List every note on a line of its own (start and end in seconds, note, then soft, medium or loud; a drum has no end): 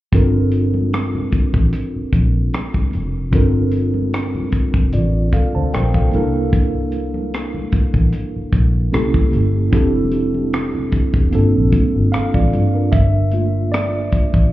0.12 1.29 G1 medium
0.12 3.28 C4 medium
0.12 3.29 D4 medium
0.12 3.29 F4 medium
0.12 3.30 A4 medium
0.12 3.30 A#4 medium
0.12 kick loud
0.12 closed hi-hat medium
0.52 closed hi-hat medium
0.74 high conga medium
0.94 cross-stick loud
0.94 closed hi-hat medium
1.15 high conga medium
1.15 low conga medium
1.32 muted fingered electric bass stroke soft
1.32 kick medium
1.32 closed hi-hat medium
1.32 low conga medium
1.54 1.71 A1 medium
1.54 kick medium
1.73 closed hi-hat medium
1.96 muted fingered electric bass stroke soft
2.12 2.48 A#1 medium
2.12 kick medium
2.12 closed hi-hat medium
2.12 high conga medium
2.53 cross-stick loud
2.53 closed hi-hat medium
2.53 muted conga soft
2.74 kick medium
2.74 high conga soft
2.91 3.29 F1 medium
2.91 closed hi-hat soft
2.91 low conga soft
3.32 4.49 G1 medium
3.32 6.08 C4 medium
3.32 6.09 D4 medium
3.32 4.90 F4 medium
3.32 4.90 A4 medium
3.32 4.91 A#4 medium
3.32 kick medium
3.32 closed hi-hat medium
3.32 muted conga soft
3.72 closed hi-hat medium
3.72 muted conga soft
3.94 high conga medium
4.14 cross-stick loud
4.14 closed hi-hat medium
4.14 muted conga soft
4.35 high conga medium
4.35 low conga medium
4.52 muted fingered electric bass stroke soft
4.52 kick medium
4.52 closed hi-hat medium
4.52 muted conga soft
4.52 low conga soft
4.74 4.91 F1 medium
4.74 kick medium
4.93 5.29 A1 medium
4.93 5.31 F4 soft
4.93 5.31 D5 medium
4.93 closed hi-hat medium
4.93 muted conga soft
5.32 5.54 A4 medium
5.32 5.53 F5 medium
5.32 kick medium
5.32 closed hi-hat medium
5.32 high conga medium
5.55 5.72 D2 medium
5.55 5.73 C5 medium
5.55 5.72 A5 medium
5.73 6.09 A#1 medium
5.73 5.94 A#4 medium
5.73 5.94 G5 medium
5.73 cross-stick loud
5.73 closed hi-hat medium
5.73 muted conga soft
5.94 6.13 A4 soft
5.94 6.33 F5 medium
5.94 kick medium
5.94 high conga soft
6.11 7.54 C2 medium
6.11 8.89 A#3 medium
6.11 8.89 D4 medium
6.11 8.89 E4 medium
6.11 8.90 A4 medium
6.11 closed hi-hat soft
6.11 muted conga soft
6.11 low conga medium
6.15 8.90 A#4 medium
6.53 kick loud
6.53 closed hi-hat medium
6.53 muted conga soft
6.92 closed hi-hat medium
6.92 muted conga soft
7.14 high conga medium
7.34 cross-stick medium
7.34 closed hi-hat medium
7.54 high conga medium
7.54 low conga medium
7.72 muted fingered electric bass stroke soft
7.72 kick medium
7.72 closed hi-hat medium
7.72 low conga medium
7.94 8.11 A1 medium
7.94 kick medium
8.13 closed hi-hat medium
8.13 muted conga soft
8.36 muted fingered electric bass stroke soft
8.52 8.88 A#1 medium
8.52 kick medium
8.52 closed hi-hat medium
8.52 high conga medium
8.92 9.29 C2 medium
8.92 9.73 A#3 medium
8.92 9.73 C#4 medium
8.92 9.72 E4 medium
8.92 9.73 G4 medium
8.92 9.73 A4 medium
8.92 cross-stick medium
8.92 closed hi-hat medium
9.14 kick medium
9.14 high conga soft
9.31 9.69 G1 medium
9.31 closed hi-hat soft
9.31 low conga medium
9.71 10.89 F1 medium
9.71 11.29 C4 medium
9.71 11.29 D4 medium
9.71 11.30 E4 medium
9.71 11.30 G4 medium
9.71 11.30 A4 medium
9.71 kick loud
9.71 closed hi-hat medium
9.96 high conga soft
10.12 closed hi-hat medium
10.34 high conga medium
10.53 cross-stick loud
10.53 closed hi-hat medium
10.53 muted conga soft
10.75 high conga medium
10.75 low conga medium
10.92 muted fingered electric bass stroke soft
10.92 kick medium
10.92 closed hi-hat medium
10.92 muted conga soft
10.92 low conga medium
11.14 11.31 E1 medium
11.14 kick medium
11.31 11.53 G1 loud
11.31 12.89 A#3 medium
11.31 12.89 C4 medium
11.31 12.11 D4 medium
11.31 12.12 F4 medium
11.31 12.12 A4 medium
11.31 closed hi-hat medium
11.56 11.72 A#1 medium
11.72 kick medium
11.72 closed hi-hat medium
11.72 high conga medium
11.96 12.12 G1 medium
12.12 12.34 A4 soft
12.12 12.33 F5 medium
12.12 muted fingered electric bass stroke soft
12.12 cross-stick loud
12.12 closed hi-hat medium
12.12 muted conga soft
12.34 12.51 A1 medium
12.34 12.73 F4 medium
12.34 12.72 D5 medium
12.34 kick medium
12.34 high conga medium
12.50 closed hi-hat soft
12.50 low conga medium
12.55 12.89 G2 medium
12.75 13.13 D4 soft
12.75 13.12 A#4 medium
12.92 14.09 G1 medium
12.92 13.68 E5 loud
12.92 kick loud
12.92 closed hi-hat medium
13.32 13.87 A3 soft
13.32 13.87 A#3 soft
13.32 13.88 F4 medium
13.32 closed hi-hat medium
13.72 14.53 D5 loud
13.72 cross-stick loud
13.72 closed hi-hat medium
14.12 muted fingered electric bass stroke soft
14.12 kick medium
14.12 closed hi-hat medium
14.34 14.51 A1 medium
14.34 kick medium